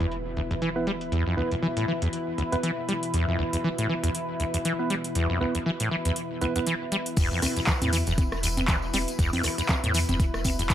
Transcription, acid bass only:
0.00 0.06 E2 loud
0.37 0.41 D2 medium
0.51 0.54 E2 medium
0.62 0.70 E3 medium
0.87 0.92 G3 medium
1.12 1.24 E2 loud
1.27 1.35 F2 medium
1.38 1.42 D2 medium
1.52 1.55 E2 medium
1.63 1.67 E3 loud
1.77 1.86 A2 medium
1.88 1.93 E3 medium
2.02 2.08 E2 loud
2.38 2.43 D2 medium
2.52 2.56 E2 medium
2.63 2.71 E3 medium
2.89 2.93 G3 medium
3.14 3.26 E2 loud
3.28 3.37 F2 medium
3.39 3.44 D2 medium
3.53 3.57 E2 medium
3.64 3.69 E3 loud
3.78 3.87 A2 medium
3.89 3.94 E3 medium
4.04 4.10 E2 loud
4.40 4.45 D2 medium
4.54 4.58 E2 medium
4.65 4.73 E3 medium
4.90 4.95 G3 medium
5.16 5.27 E2 loud
5.30 5.39 F2 medium
5.41 5.45 D2 medium
5.55 5.59 E2 medium
5.66 5.71 E3 loud
5.80 5.89 A2 medium
5.91 5.96 E3 medium
6.06 6.11 E2 loud
6.42 6.46 D2 medium
6.56 6.59 E2 medium
6.67 6.75 E3 medium
6.92 6.97 G3 medium
7.17 7.29 E2 loud
7.31 7.40 F2 medium
7.42 7.47 D2 medium
7.57 7.60 E2 medium
7.67 7.72 E3 loud
7.82 7.91 A2 medium
7.93 7.97 E3 medium
8.07 8.13 E2 loud
8.43 8.48 D2 medium
8.57 8.61 E2 medium
8.68 8.76 E3 medium
8.94 8.98 G3 medium
9.19 9.31 E2 loud
9.33 9.42 F2 medium
9.44 9.49 D2 medium
9.58 9.62 E2 medium
9.69 9.74 E3 loud
9.84 9.93 A2 medium
9.94 9.99 E3 medium
10.09 10.15 E2 loud
10.45 10.50 D2 medium
10.59 10.63 E2 medium
10.70 10.74 E3 medium

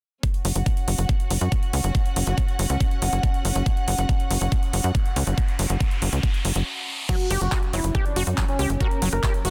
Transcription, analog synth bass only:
0.45 0.52 F#1 medium
0.56 0.63 F#1 medium
0.88 0.95 F#1 medium
0.98 1.06 F#1 medium
1.31 1.38 F#1 medium
1.41 1.49 F#2 medium
1.73 1.81 C#2 loud
1.84 1.92 F#1 medium
2.16 2.24 F#1 medium
2.27 2.34 F#1 medium
2.59 2.67 F#1 loud
2.70 2.77 C#2 medium
3.02 3.09 F#1 medium
3.13 3.20 F#1 medium
3.45 3.52 F#1 medium
3.56 3.63 F#1 medium
3.88 3.95 F#1 medium
3.98 4.06 F#1 medium
4.31 4.38 F#1 medium
4.41 4.49 F#1 medium
4.73 4.81 F#1 medium
4.84 4.92 F#2 medium
5.16 5.24 C#2 loud
5.27 5.34 F#1 medium
5.59 5.67 F#1 loud
5.70 5.77 F#1 medium
6.02 6.09 F#1 loud
6.13 6.20 C#2 medium
6.45 6.52 F#1 medium
6.56 6.63 F#1 medium
7.31 7.38 F#1 loud
7.41 7.49 F#1 medium
7.73 7.81 F#1 loud
7.84 7.92 F#1 medium
8.16 8.24 F#1 medium
8.27 8.34 F#2 medium
8.59 8.67 C#2 medium
8.70 8.77 F#1 medium
9.02 9.09 F#1 medium
9.13 9.20 F#1 medium
9.45 9.50 F#1 medium

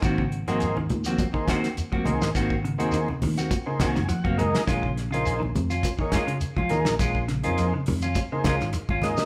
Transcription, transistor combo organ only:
0.48 0.77 A#3 medium
0.48 0.77 D#4 medium
0.48 0.77 G#4 medium
0.48 0.77 C5 medium
1.33 1.58 A#3 medium
1.33 1.58 D#4 medium
1.33 1.59 G#4 medium
1.33 1.58 C5 medium
2.05 2.30 A#3 medium
2.05 2.30 D#4 medium
2.05 2.31 G#4 medium
2.05 2.30 C5 medium
2.78 3.08 A#3 medium
2.78 3.08 D#4 medium
2.78 3.08 G#4 medium
2.78 3.08 C5 loud
3.66 3.91 A#3 medium
3.66 3.91 D#4 medium
3.66 3.90 G#4 medium
3.66 3.90 C5 medium
3.80 4.07 G#5 medium
4.09 4.23 F#5 medium
4.25 4.37 F5 medium
4.38 4.63 A#3 medium
4.38 4.63 D#4 medium
4.38 4.63 G#4 medium
4.38 4.63 A#4 medium
4.38 4.65 D#5 medium
5.13 5.42 A#3 medium
5.13 5.42 D#4 medium
5.13 5.42 G#4 medium
5.13 5.42 C5 medium
6.00 6.24 A#3 medium
6.00 6.24 D#4 medium
6.00 6.24 G#4 medium
6.00 6.24 C#5 medium
6.70 6.95 A#3 medium
6.70 6.95 D#4 medium
6.70 6.95 G#4 medium
6.70 6.95 A#4 medium
7.43 7.73 A#3 medium
7.43 7.73 D#4 medium
7.43 7.73 G#4 medium
7.43 7.73 C5 medium
8.32 8.56 A#3 medium
8.32 8.56 D#4 medium
8.32 8.56 G#4 medium
8.32 8.56 C5 medium
9.03 9.25 A#3 medium
9.03 9.25 D#4 medium
9.03 9.25 G#4 medium
9.03 9.25 D#5 medium

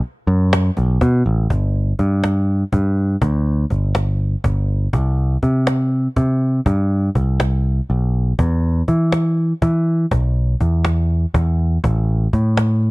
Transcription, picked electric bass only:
0.27 0.69 F#2 medium
0.77 0.98 B1 medium
1.01 1.22 B2 medium
1.26 1.47 A1 medium
1.50 1.92 G1 medium
1.99 2.63 G2 medium
2.73 3.15 G2 medium
3.22 3.64 D2 medium
3.71 4.35 G1 medium
4.44 4.87 G1 medium
4.93 5.36 C2 medium
5.43 6.07 C3 medium
6.17 6.59 C3 medium
6.66 7.09 G2 medium
7.15 7.79 C2 medium
7.90 8.32 B1 medium
8.39 8.81 E2 medium
8.88 9.52 E3 medium
9.62 10.05 E3 medium
10.12 10.54 B1 medium
10.61 11.25 E2 medium
11.34 11.77 E2 medium
11.84 12.27 A1 medium
12.33 12.91 A2 medium

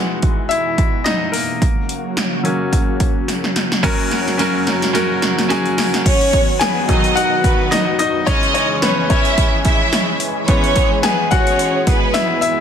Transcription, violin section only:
6.06 6.58 C#4 loud
6.06 6.58 C#5 loud
6.61 6.83 B3 medium
6.61 6.83 B4 loud
6.88 7.41 D#4 medium
6.88 7.41 D#5 loud
7.44 7.96 B3 medium
7.44 7.96 B4 medium
8.27 8.79 D#4 loud
8.27 8.79 D#5 loud
8.83 9.05 C#4 medium
8.83 9.05 C#5 loud
9.10 9.62 E4 medium
9.10 9.62 E5 loud
9.65 10.17 E4 medium
9.65 10.18 E5 loud
10.48 11.00 C#4 loud
10.48 11.00 C#5 loud
11.04 11.26 B3 medium
11.04 11.26 B4 loud
11.32 11.84 C#4 medium
11.32 11.84 C#5 loud
11.88 12.39 B3 medium
11.88 12.39 B4 loud

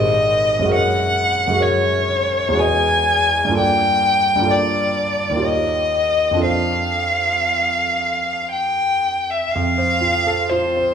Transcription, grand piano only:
0.00 0.64 G#1 soft
0.00 0.61 G#3 soft
0.00 0.67 G4 soft
0.00 0.67 A#4 soft
0.00 0.70 C5 soft
0.59 1.46 F#2 soft
0.59 1.49 G#3 soft
0.65 1.52 F#4 soft
0.65 1.55 A#4 soft
0.72 1.58 C#5 soft
1.48 2.51 F#2 soft
1.48 2.50 G#3 soft
1.53 2.53 F#4 soft
1.53 2.56 A#4 soft
1.60 2.57 C#5 soft
2.48 3.48 E2 soft
2.48 3.50 G#3 soft
2.54 3.51 F#4 soft
2.54 3.53 B4 soft
2.61 3.54 D#5 soft
3.45 4.34 G2 soft
3.45 4.37 A#3 soft
3.51 4.40 F4 soft
3.51 4.43 A4 soft
3.57 4.46 D5 soft
4.36 5.34 G2 soft
4.36 5.31 A#3 soft
4.42 5.34 F4 soft
4.42 5.39 A4 soft
4.48 5.40 D5 soft
5.29 6.35 D#2 soft
5.29 6.36 A#3 soft
5.36 6.35 F4 soft
5.36 6.39 G4 soft
5.42 6.41 C#5 soft
6.31 9.43 F2 soft
6.31 9.44 D4 soft
6.37 9.46 F4 soft
6.37 9.47 A4 soft
6.43 9.49 C5 soft
9.55 10.94 F2 soft
9.78 10.17 C5 soft
10.01 10.40 F4 soft
10.27 10.65 A4 soft
10.51 10.89 F4 soft
10.76 10.94 C5 soft

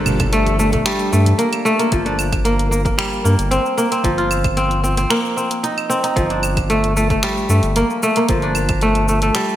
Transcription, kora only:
0.00 1.91 F3 medium
0.00 0.84 G3 medium
0.00 0.39 A#3 medium
0.00 1.61 D4 medium
0.33 0.59 A3 loud
0.59 0.73 A3 medium
0.73 1.12 A3 medium
0.86 1.97 G3 medium
1.12 1.44 A3 medium
1.38 1.71 A#3 medium
1.65 1.85 A3 loud
1.79 2.44 A#3 medium
1.92 4.03 F3 medium
2.06 3.74 D4 medium
2.45 2.71 A#3 loud
2.71 2.84 A#3 medium
2.85 3.24 A#3 medium
2.98 4.09 G3 medium
3.24 3.77 A#3 medium
3.51 3.91 C4 medium
3.77 5.10 A#3 medium
3.92 4.56 C4 medium
4.04 6.15 F3 medium
4.18 5.69 F4 medium
4.57 4.83 C4 loud
4.83 4.97 C4 medium
4.97 5.36 C4 medium
5.10 6.76 A#3 medium
5.37 5.89 C4 medium
5.63 6.03 D#4 medium
5.90 7.70 C4 medium
6.04 6.36 D#4 medium
6.16 8.28 F3 medium
6.30 7.98 D4 medium
6.70 6.96 A3 loud
6.97 7.10 A3 medium
7.10 7.49 A3 medium
7.23 9.34 G3 medium
7.50 7.82 A3 medium
7.76 8.09 A#3 medium
8.03 8.23 A3 loud
8.17 8.88 A#3 medium
8.29 9.56 F3 medium
8.43 9.56 D4 medium
8.82 9.08 A3 loud
9.09 9.22 A3 medium
9.22 9.56 A3 medium
9.35 9.56 G3 medium

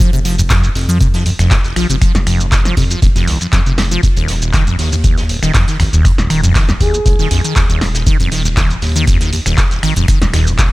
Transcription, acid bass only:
0.00 0.11 F3 loud
0.13 0.20 C3 loud
0.25 0.36 F3 medium
0.38 0.42 F2 loud
0.50 0.65 F2 loud
0.64 0.70 F#2 medium
0.75 0.86 F1 medium
0.89 0.99 F3 loud
1.01 1.08 C3 loud
1.14 1.24 F3 medium
1.26 1.30 F2 loud
1.39 1.53 F2 loud
1.51 1.59 F#2 medium
1.65 1.74 F1 medium
1.76 1.87 F3 loud
1.90 1.96 C3 loud
2.02 2.13 F3 medium
2.15 2.19 F2 loud
2.27 2.42 F2 loud
2.40 2.47 F#2 medium
2.52 2.63 F1 medium
2.65 2.75 F3 loud
2.77 2.85 C3 loud
2.91 3.00 F3 medium
3.02 3.07 F2 loud
3.16 3.29 F2 loud
3.28 3.39 D#2 loud
3.41 3.48 F2 medium
3.53 3.60 F3 medium
3.66 3.73 C3 medium
3.78 3.85 F2 medium
3.91 4.01 F3 loud
4.03 4.08 D#2 loud
4.17 4.30 D#2 loud
4.28 4.36 F2 medium
4.42 4.52 D#1 medium
4.54 4.65 D#3 loud
4.67 4.77 F2 loud
4.79 4.90 D#3 medium
4.92 4.96 D#2 loud
5.04 5.19 D#2 loud
5.17 5.24 F2 medium
5.29 5.40 D#1 medium
5.43 5.52 D#3 loud
5.54 5.65 F2 loud
5.68 5.78 D#3 medium
5.80 5.84 D#2 loud
5.93 6.06 D#2 loud
6.05 6.12 F2 medium
6.18 6.28 D#1 medium
6.30 6.41 D#3 loud
6.43 6.53 F2 loud
6.55 6.66 D#3 medium
6.69 6.73 D#2 loud
6.80 6.95 D#2 loud
6.94 7.00 F2 medium
7.06 7.17 D#1 medium
7.19 7.29 D#3 loud
7.31 7.42 F2 loud
7.44 7.54 D#3 medium
7.56 7.61 D#2 loud
7.70 7.83 D#2 loud
7.81 7.89 F2 medium
7.95 8.05 D#1 medium
8.07 8.18 D#3 loud
8.20 8.30 F2 loud
8.32 8.43 D#3 medium
8.45 8.49 D#2 loud
8.57 8.72 D#2 loud
8.70 8.77 F2 medium
8.82 8.93 D#1 medium
8.96 9.05 D#3 loud
9.07 9.18 F2 loud
9.21 9.31 D#3 medium
9.33 9.37 D#2 loud
9.46 9.59 D#2 loud
9.58 9.65 F2 medium
9.71 9.81 D#1 medium
9.83 9.94 D#3 loud
9.96 10.06 F2 loud
10.08 10.19 D#3 medium
10.21 10.25 D#2 loud
10.33 10.48 D#2 loud
10.47 10.53 F2 medium
10.59 10.70 D#1 medium

